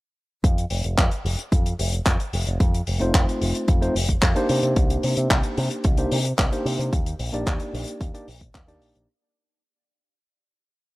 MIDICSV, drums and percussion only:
0, 0, Header, 1, 2, 480
1, 0, Start_track
1, 0, Tempo, 540541
1, 392, Time_signature, 4, 2, 24, 8
1, 9728, End_track
2, 0, Start_track
2, 0, Title_t, "Drums"
2, 390, Note_on_c, 9, 36, 108
2, 394, Note_on_c, 9, 42, 68
2, 478, Note_off_c, 9, 36, 0
2, 483, Note_off_c, 9, 42, 0
2, 516, Note_on_c, 9, 42, 50
2, 604, Note_off_c, 9, 42, 0
2, 624, Note_on_c, 9, 46, 87
2, 712, Note_off_c, 9, 46, 0
2, 748, Note_on_c, 9, 42, 49
2, 836, Note_off_c, 9, 42, 0
2, 870, Note_on_c, 9, 36, 109
2, 872, Note_on_c, 9, 39, 118
2, 877, Note_on_c, 9, 42, 67
2, 959, Note_off_c, 9, 36, 0
2, 961, Note_off_c, 9, 39, 0
2, 966, Note_off_c, 9, 42, 0
2, 989, Note_on_c, 9, 42, 46
2, 1078, Note_off_c, 9, 42, 0
2, 1115, Note_on_c, 9, 46, 93
2, 1204, Note_off_c, 9, 46, 0
2, 1232, Note_on_c, 9, 42, 55
2, 1321, Note_off_c, 9, 42, 0
2, 1350, Note_on_c, 9, 36, 107
2, 1354, Note_on_c, 9, 42, 65
2, 1439, Note_off_c, 9, 36, 0
2, 1442, Note_off_c, 9, 42, 0
2, 1474, Note_on_c, 9, 42, 56
2, 1563, Note_off_c, 9, 42, 0
2, 1592, Note_on_c, 9, 46, 104
2, 1681, Note_off_c, 9, 46, 0
2, 1712, Note_on_c, 9, 42, 55
2, 1801, Note_off_c, 9, 42, 0
2, 1830, Note_on_c, 9, 36, 107
2, 1831, Note_on_c, 9, 42, 69
2, 1832, Note_on_c, 9, 39, 109
2, 1919, Note_off_c, 9, 36, 0
2, 1920, Note_off_c, 9, 42, 0
2, 1921, Note_off_c, 9, 39, 0
2, 1953, Note_on_c, 9, 42, 51
2, 2041, Note_off_c, 9, 42, 0
2, 2072, Note_on_c, 9, 46, 96
2, 2160, Note_off_c, 9, 46, 0
2, 2193, Note_on_c, 9, 42, 52
2, 2282, Note_off_c, 9, 42, 0
2, 2310, Note_on_c, 9, 36, 114
2, 2313, Note_on_c, 9, 42, 72
2, 2399, Note_off_c, 9, 36, 0
2, 2402, Note_off_c, 9, 42, 0
2, 2437, Note_on_c, 9, 42, 52
2, 2525, Note_off_c, 9, 42, 0
2, 2548, Note_on_c, 9, 46, 91
2, 2637, Note_off_c, 9, 46, 0
2, 2672, Note_on_c, 9, 42, 44
2, 2761, Note_off_c, 9, 42, 0
2, 2790, Note_on_c, 9, 36, 119
2, 2790, Note_on_c, 9, 42, 73
2, 2795, Note_on_c, 9, 39, 116
2, 2879, Note_off_c, 9, 36, 0
2, 2879, Note_off_c, 9, 42, 0
2, 2884, Note_off_c, 9, 39, 0
2, 2921, Note_on_c, 9, 42, 49
2, 3009, Note_off_c, 9, 42, 0
2, 3033, Note_on_c, 9, 46, 93
2, 3121, Note_off_c, 9, 46, 0
2, 3152, Note_on_c, 9, 42, 50
2, 3241, Note_off_c, 9, 42, 0
2, 3267, Note_on_c, 9, 42, 71
2, 3270, Note_on_c, 9, 36, 115
2, 3356, Note_off_c, 9, 42, 0
2, 3359, Note_off_c, 9, 36, 0
2, 3396, Note_on_c, 9, 42, 48
2, 3485, Note_off_c, 9, 42, 0
2, 3516, Note_on_c, 9, 46, 105
2, 3605, Note_off_c, 9, 46, 0
2, 3631, Note_on_c, 9, 36, 62
2, 3632, Note_on_c, 9, 42, 51
2, 3720, Note_off_c, 9, 36, 0
2, 3721, Note_off_c, 9, 42, 0
2, 3750, Note_on_c, 9, 39, 114
2, 3751, Note_on_c, 9, 36, 117
2, 3752, Note_on_c, 9, 42, 77
2, 3839, Note_off_c, 9, 39, 0
2, 3840, Note_off_c, 9, 36, 0
2, 3841, Note_off_c, 9, 42, 0
2, 3871, Note_on_c, 9, 42, 52
2, 3960, Note_off_c, 9, 42, 0
2, 3988, Note_on_c, 9, 46, 96
2, 4077, Note_off_c, 9, 46, 0
2, 4112, Note_on_c, 9, 42, 54
2, 4201, Note_off_c, 9, 42, 0
2, 4229, Note_on_c, 9, 42, 73
2, 4231, Note_on_c, 9, 36, 118
2, 4318, Note_off_c, 9, 42, 0
2, 4320, Note_off_c, 9, 36, 0
2, 4352, Note_on_c, 9, 42, 57
2, 4441, Note_off_c, 9, 42, 0
2, 4469, Note_on_c, 9, 46, 97
2, 4558, Note_off_c, 9, 46, 0
2, 4589, Note_on_c, 9, 42, 51
2, 4678, Note_off_c, 9, 42, 0
2, 4710, Note_on_c, 9, 36, 117
2, 4711, Note_on_c, 9, 42, 73
2, 4712, Note_on_c, 9, 39, 122
2, 4799, Note_off_c, 9, 36, 0
2, 4799, Note_off_c, 9, 42, 0
2, 4801, Note_off_c, 9, 39, 0
2, 4825, Note_on_c, 9, 42, 54
2, 4914, Note_off_c, 9, 42, 0
2, 4950, Note_on_c, 9, 46, 92
2, 5039, Note_off_c, 9, 46, 0
2, 5069, Note_on_c, 9, 42, 51
2, 5158, Note_off_c, 9, 42, 0
2, 5184, Note_on_c, 9, 42, 70
2, 5192, Note_on_c, 9, 36, 124
2, 5273, Note_off_c, 9, 42, 0
2, 5280, Note_off_c, 9, 36, 0
2, 5305, Note_on_c, 9, 42, 51
2, 5394, Note_off_c, 9, 42, 0
2, 5430, Note_on_c, 9, 46, 113
2, 5519, Note_off_c, 9, 46, 0
2, 5550, Note_on_c, 9, 42, 54
2, 5639, Note_off_c, 9, 42, 0
2, 5671, Note_on_c, 9, 39, 118
2, 5672, Note_on_c, 9, 36, 120
2, 5676, Note_on_c, 9, 42, 69
2, 5760, Note_off_c, 9, 39, 0
2, 5761, Note_off_c, 9, 36, 0
2, 5764, Note_off_c, 9, 42, 0
2, 5794, Note_on_c, 9, 42, 53
2, 5883, Note_off_c, 9, 42, 0
2, 5915, Note_on_c, 9, 46, 99
2, 6004, Note_off_c, 9, 46, 0
2, 6042, Note_on_c, 9, 42, 47
2, 6131, Note_off_c, 9, 42, 0
2, 6151, Note_on_c, 9, 36, 122
2, 6155, Note_on_c, 9, 42, 77
2, 6240, Note_off_c, 9, 36, 0
2, 6243, Note_off_c, 9, 42, 0
2, 6272, Note_on_c, 9, 42, 54
2, 6361, Note_off_c, 9, 42, 0
2, 6388, Note_on_c, 9, 46, 101
2, 6477, Note_off_c, 9, 46, 0
2, 6516, Note_on_c, 9, 42, 53
2, 6604, Note_off_c, 9, 42, 0
2, 6630, Note_on_c, 9, 36, 124
2, 6630, Note_on_c, 9, 42, 68
2, 6638, Note_on_c, 9, 39, 110
2, 6719, Note_off_c, 9, 36, 0
2, 6719, Note_off_c, 9, 42, 0
2, 6727, Note_off_c, 9, 39, 0
2, 6746, Note_on_c, 9, 42, 53
2, 6834, Note_off_c, 9, 42, 0
2, 6878, Note_on_c, 9, 46, 106
2, 6967, Note_off_c, 9, 46, 0
2, 6991, Note_on_c, 9, 42, 52
2, 7079, Note_off_c, 9, 42, 0
2, 7110, Note_on_c, 9, 36, 120
2, 7115, Note_on_c, 9, 42, 73
2, 7198, Note_off_c, 9, 36, 0
2, 7204, Note_off_c, 9, 42, 0
2, 7233, Note_on_c, 9, 42, 59
2, 7322, Note_off_c, 9, 42, 0
2, 7352, Note_on_c, 9, 46, 109
2, 7441, Note_off_c, 9, 46, 0
2, 7469, Note_on_c, 9, 42, 49
2, 7470, Note_on_c, 9, 36, 62
2, 7558, Note_off_c, 9, 42, 0
2, 7559, Note_off_c, 9, 36, 0
2, 7589, Note_on_c, 9, 36, 120
2, 7591, Note_on_c, 9, 39, 117
2, 7595, Note_on_c, 9, 42, 74
2, 7678, Note_off_c, 9, 36, 0
2, 7680, Note_off_c, 9, 39, 0
2, 7684, Note_off_c, 9, 42, 0
2, 7711, Note_on_c, 9, 42, 57
2, 7799, Note_off_c, 9, 42, 0
2, 7830, Note_on_c, 9, 46, 88
2, 7918, Note_off_c, 9, 46, 0
2, 7950, Note_on_c, 9, 42, 50
2, 8038, Note_off_c, 9, 42, 0
2, 9728, End_track
0, 0, End_of_file